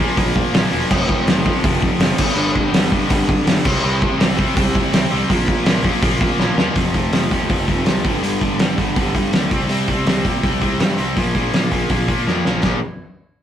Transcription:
0.00 A#2 F3 A#3
0.17 A#1 A#2 F3 A#3, kick, open hi-hat
0.36 kick
0.53 A#1 A#2 F3 A#3, snare, open hi-hat
0.71 E1 A#2 F3 A#3
0.89 F1 F2 C3 F3, kick, crash
1.09 kick
1.27 F1 F2 C3 F3, snare, open hi-hat
1.45 F2 C3 F3, kick
1.64 F1 F2 C3 F3, kick, open hi-hat
1.82 kick
2.00 F1 F2 C3 F3, snare, open hi-hat
2.17 G1 G2 D3 G3, kick, crash
2.36 G1 G2 D3 G3
2.56 kick
2.72 G1 G2 D3 G3, snare, open hi-hat
2.90 G2 D3 G3, kick
3.08 G1 G2 D3 G3, kick, open hi-hat
3.29 kick
3.46 G1 G2 D3 G3, snare, open hi-hat
3.64 C2 C3 G3 C4, kick, crash
3.83 C2 C3 G3 C4
4.02 kick
4.20 C2 C3 G3 C4, snare, open hi-hat
4.38 C3 G3 C4, kick
4.56 C2 C3 G3 C4, kick, open hi-hat
4.75 kick
4.93 C2 C3 G3 C4, snare, open hi-hat
5.10 C2 C3 G3 C4
5.29 A#1 A#2 F3 A#3, kick, open hi-hat
5.48 kick
5.65 A#1 A#2 F3 A#3, snare, open hi-hat
5.83 A#2 F3 A#3, kick
6.02 A#1 A#2 F3 A#3, kick, open hi-hat
6.21 kick
6.39 A#1 A#2 F3 A#3, snare
6.57 D#2 A#2 F3 A#3, snare
6.75 F1 F2 C3 F3, kick, open hi-hat
6.94 F1 F2 C3 F3, kick, open hi-hat
7.12 F1 F2 C3 F3, snare, open hi-hat
7.31 D#2 F2 C3 F3, kick, open hi-hat
7.49 F1 F2 C3 F3, kick, open hi-hat
7.67 F1 F2 C3 F3, kick, open hi-hat
7.86 C2 F2 C3 F3, snare, open hi-hat
8.04 G1 G2 D3 G3, kick, open hi-hat
8.22 G1 G2 D3 G3, open hi-hat
8.41 G1 G2 D3 G3, kick, open hi-hat
8.59 G1 G2 D3 G3, snare, open hi-hat
8.77 G1 G2 D3 G3, kick, open hi-hat
8.96 G1 G2 D3 G3, kick, open hi-hat
9.14 G2 D3 G3, kick, open hi-hat
9.32 D2 G2 D3 G3, snare, open hi-hat
9.51 C2 C3 G3 C4, kick, open hi-hat
9.69 C2 C3 G3 C4, open hi-hat
9.88 C2 C3 G3 C4, kick, open hi-hat
10.06 C2 C3 G3 C4, snare, open hi-hat
10.25 A#2 C3 G3 C4, kick, open hi-hat
10.43 C2 C3 G3 C4, kick, open hi-hat
10.61 C2 C3 G3 C4, kick, open hi-hat
10.79 G2 C3 G3 C4, snare, open hi-hat
10.98 C2 C3 G3 C4, open hi-hat
11.17 A#1 A#2 F3 A#3, kick, open hi-hat
11.35 A#1 A#2 F3 A#3, kick, open hi-hat
11.53 A#1 A#2 F3 A#3, snare, open hi-hat
11.72 A#1 A#2 F3 A#3, kick, open hi-hat
11.89 A#1 A#2 F3 A#3, kick, open hi-hat
12.08 A#2 F3 A#3, kick, open hi-hat
12.26 F2 A#2 F3 A#3, snare
12.44 A#1 A#2 F3 A#3, snare
12.61 A#1 A#2 F3 A#3, kick, snare, crash

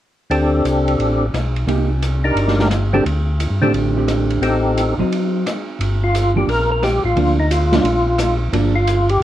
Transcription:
0.30 D2 C4 D4 G4 A4, ride
0.64 C2, hi-hat pedal, ride
0.88 ride
0.98 A1, ride
1.33 B1, cross-stick, hi-hat pedal, ride
1.56 ride
1.67 C2 A#3 D#4 G4, ride
2.03 hi-hat pedal, ride
2.24 D4 D#4 G4 A#4
2.35 G1, ride
2.48 snare
2.59 snare
2.71 cross-stick, hi-hat pedal, ride
2.93 D3 A3 C4 D4 G4 A4
3.05 D2, ride
3.40 hi-hat pedal, ride
3.50 G2
3.62 A2 D3 A3 C4 D4 G4 A4
3.74 A1, ride
3.96 D3 A3 C4 G4
4.08 cross-stick, hi-hat pedal, ride
4.31 ride
4.41 A1 C4 D#4 G4 A4, ride
4.78 hi-hat pedal, ride
4.97 A1 F#3 C4 D#4
5.12 ride
5.46 cross-stick, hi-hat pedal, ride
5.79 G1, ride
6.03 F4
6.14 hi-hat pedal, ride
6.36 F3 A#3 D4 G4
6.47 A#1 A#4, ride
6.72 A#4
6.83 G4, cross-stick, hi-hat pedal, ride
7.04 A1 F4
7.16 D2 F3 A#3 D4, ride
7.40 D#4
7.51 F4, hi-hat pedal, ride
7.72 F3 A#3 D4, snare, ride
7.83 A#1, ride
8.18 cross-stick, hi-hat pedal, ride
8.52 G1 F3 A#3 D4, ride
8.76 F4
8.87 hi-hat pedal, ride
9.09 G4, ride

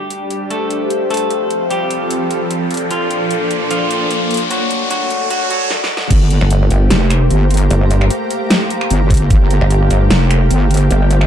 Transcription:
Already playing: G3 D4 G4, riser
0.00 C5
0.10 closed hi-hat
0.31 closed hi-hat
0.43 F5 G5
0.50 A3 A4, closed hi-hat
0.71 closed hi-hat
0.90 closed hi-hat
1.10 A3 A4, closed hi-hat
1.14 closed hi-hat
1.17 closed hi-hat
1.31 F3 C4 A4, closed hi-hat
1.51 closed hi-hat
1.69 G3 G4 A4 G5, closed hi-hat
1.81 D5
1.91 closed hi-hat
2.11 closed hi-hat
2.31 closed hi-hat
2.51 closed hi-hat
2.71 closed hi-hat
2.74 closed hi-hat
2.77 closed hi-hat
2.90 A#2 F3 A#3 D4 F4, closed hi-hat
3.11 closed hi-hat
3.31 closed hi-hat
3.51 closed hi-hat
3.70 F3 F4, closed hi-hat
3.91 closed hi-hat
4.11 closed hi-hat
4.31 closed hi-hat
4.34 closed hi-hat
4.37 closed hi-hat
4.50 D3 F#3 A3 F#4, closed hi-hat
4.71 closed hi-hat
4.90 F#3 F#4, closed hi-hat
5.11 closed hi-hat
5.30 F#3 F#4, closed hi-hat
5.50 F#3 F#4, closed hi-hat
5.71 snare
5.84 snare
5.97 snare
6.11 G1 A3 A#3 G4 C5, kick, closed hi-hat, crash
6.31 closed hi-hat
6.41 G1, finger snap
6.51 closed hi-hat
6.57 A#5
6.71 G1 F5, closed hi-hat
6.91 F1, snare, closed hi-hat
7.10 finger snap, closed hi-hat
7.31 G1, closed hi-hat
7.51 closed hi-hat
7.54 closed hi-hat
7.57 closed hi-hat
7.71 G1, closed hi-hat
7.91 closed hi-hat
8.01 finger snap
8.11 closed hi-hat
8.31 closed hi-hat
8.51 snare, closed hi-hat
8.70 closed hi-hat
8.81 finger snap
8.91 G1, closed hi-hat
9.11 kick, closed hi-hat
9.14 closed hi-hat
9.17 closed hi-hat
9.30 G1, kick, closed hi-hat
9.51 closed hi-hat
9.61 G1, finger snap
9.71 closed hi-hat
9.77 G5
9.91 G1, closed hi-hat
10.11 F1, snare, closed hi-hat
10.31 finger snap, closed hi-hat
10.51 G1, closed hi-hat
10.71 closed hi-hat
10.74 closed hi-hat
10.77 closed hi-hat
10.91 G1, closed hi-hat
11.11 closed hi-hat
11.21 finger snap

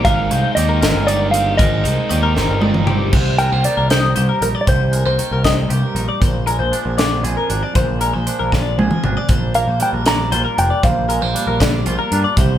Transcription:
Already playing: D#3
0.04 G#1 G#2 D#3 G#3 A#3 D#4 A#4 F5, kick, closed hi-hat
0.30 C2 G#3 A#3 D#4 C5, closed hi-hat
0.55 D#2 D#3 G#3 A#3 D#4 G4 D5 D#5, closed hi-hat
0.69 A#4
0.81 G#1 G#3 A#3 C4 D#4 A#4, snare, closed hi-hat
0.96 G1
1.06 D#3 G#3 A#3 D#4 D5, closed hi-hat
1.20 A#4
1.31 G#3 A#3 C4 D#4 G4 F5, closed hi-hat
1.57 G#1 G#2 D#3 G#3 A#3 D#4 A#4 D#5, kick, closed hi-hat
1.83 C2 G#3 A#3 D#4 C5, closed hi-hat
2.09 D#2 D#3 G#3 A#3 D#4 G4 D5, closed hi-hat
2.23 A#4
2.35 G#1 G#3 A#3 C4 D#4 A#4, snare
2.50 G1
2.61 D#3 G#3 A#3 D#4 D5, high tom
2.74 A#4, mid tom
2.87 G#3 A#3 C4 D#4 G4, mid tom
3.13 C2 C3 C5, kick, crash
3.38 G#3 A#4 G5, closed hi-hat
3.51 C2 A#3 C5
3.64 D#3 D#4 D5, closed hi-hat
3.77 C2 A#4
3.90 C5 D#5, snare, closed hi-hat
4.16 C2 G2 G4 C5, closed hi-hat
4.29 A#4
4.41 A#1 D#4 A#4, closed hi-hat
4.55 D5
4.61 D5
4.67 C2 C3 C5, kick, closed hi-hat
4.92 G#3 A#4, closed hi-hat
5.05 C2 A#3 C5
5.18 D#3 D#4, closed hi-hat
5.31 C2 A#4
5.44 D#5, kick, snare, closed hi-hat
5.69 C2 G2 G4 C5, closed hi-hat
5.83 A#4
5.95 A#1 D#4, closed hi-hat
6.09 D5
6.20 A#1 A#2 C5, kick, closed hi-hat
6.46 G#3 A#4, closed hi-hat
6.59 A#1 C5
6.72 F3 D4, closed hi-hat
6.85 A#1 A#4
6.98 D5, snare, closed hi-hat
7.23 A#1 F2 G#4 C5, closed hi-hat
7.37 A#4
7.49 G#1 D4, closed hi-hat
7.63 D5
7.74 A#1 A#2 C5, kick, closed hi-hat
8.00 G#3 A#4, closed hi-hat
8.14 A#1 C5
8.26 F3 D4, closed hi-hat
8.39 A#1 A#4
8.52 D5, kick, snare
8.78 A#1 F2 G#4 C5, high tom
8.91 A#4, mid tom
9.04 G#1 D4, mid tom
9.17 D5
9.29 A#1 A#2 C5, kick, closed hi-hat
9.54 A#3 A#4 F5, closed hi-hat
9.68 A#1 C5
9.80 G3 D4 G5, closed hi-hat
9.93 A#1 A#4
10.06 D5 A#5, snare, closed hi-hat
10.31 A#1 A#2 F4 C5, closed hi-hat
10.45 A#4
10.57 F1 D4 G5, closed hi-hat
10.70 D5
10.83 A#1 A#2 C5 F5, kick, closed hi-hat
11.09 G#3 A#4, closed hi-hat
11.21 A#1 A#3 C5
11.34 G3 D4, closed hi-hat
11.47 A#1 A#4
11.60 D5, kick, snare, closed hi-hat
11.85 A#1 A#2 F4 C5, closed hi-hat
11.99 A#4
12.12 G2 D4, closed hi-hat
12.24 D5
12.37 C2 C3 C5, kick, closed hi-hat

